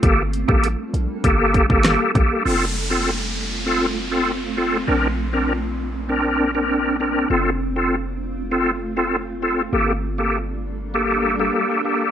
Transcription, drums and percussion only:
0.03 kick, closed hi-hat
0.33 closed hi-hat
0.49 kick
0.64 closed hi-hat
0.94 closed hi-hat
1.24 kick, closed hi-hat
1.54 kick, closed hi-hat
1.70 kick
1.85 cross-stick, snare, closed hi-hat
2.15 kick, closed hi-hat

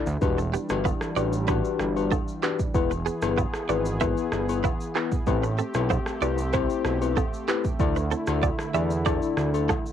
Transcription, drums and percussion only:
0.06 shaker
0.22 kick, high agogo, shaker
0.38 shaker
0.54 shaker
0.69 cross-stick, high agogo, shaker
0.85 kick, low woodblock, shaker
1.01 cross-stick, shaker
1.17 high agogo, shaker
1.33 shaker
1.48 kick, cross-stick, high agogo, shaker
1.65 shaker
1.79 cross-stick, shaker
1.96 high agogo, shaker
2.11 kick, low woodblock, shaker
2.28 shaker
2.43 clap, shaker
2.59 kick, shaker
2.74 kick, high agogo, shaker
2.91 shaker
3.06 shaker
3.22 cross-stick, high agogo, shaker
3.38 kick, low woodblock, shaker
3.54 cross-stick, shaker
3.69 high agogo, shaker
3.85 shaker
4.01 kick, cross-stick, high agogo, shaker
4.17 shaker
4.32 cross-stick, shaker
4.49 high agogo, shaker
4.64 kick, low woodblock, shaker
4.81 shaker
4.95 clap, shaker
5.12 kick, shaker
5.27 kick, high agogo, shaker
5.44 shaker
5.59 shaker
5.74 cross-stick, high agogo, shaker
5.90 kick, low woodblock, shaker
6.06 cross-stick, shaker
6.22 high agogo, shaker
6.38 shaker
6.53 kick, cross-stick, high agogo, shaker
6.70 shaker
6.85 cross-stick, shaker
7.02 high agogo, shaker
7.17 kick, low woodblock, shaker
7.33 shaker
7.48 clap, shaker
7.64 kick, shaker
7.80 kick, high agogo, shaker
7.96 shaker
8.11 shaker
8.27 cross-stick, high agogo, shaker
8.43 kick, low woodblock, shaker
8.59 cross-stick, shaker
8.75 high agogo, shaker
8.91 shaker
9.06 kick, cross-stick, high agogo, shaker
9.22 shaker
9.37 cross-stick, shaker
9.54 high agogo, shaker
9.69 kick, cross-stick, low woodblock, shaker
9.86 shaker

